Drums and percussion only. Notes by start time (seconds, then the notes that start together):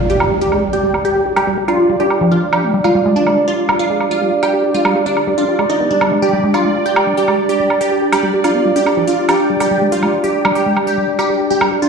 0.20 high woodblock
0.52 high woodblock
0.94 high woodblock
1.36 high woodblock
1.68 high woodblock
2.10 high woodblock
2.53 high woodblock
2.84 high woodblock
3.27 high woodblock
3.69 high woodblock
4.00 high woodblock
4.43 high woodblock
4.85 high woodblock
5.17 high woodblock
5.59 high woodblock
6.01 high woodblock
6.54 high woodblock
6.96 high woodblock
7.28 high woodblock
7.70 high woodblock
8.12 high woodblock
8.44 high woodblock
8.86 high woodblock
9.29 high woodblock
9.60 high woodblock
10.03 high woodblock
10.45 high woodblock
10.77 high woodblock
11.19 high woodblock
11.61 high woodblock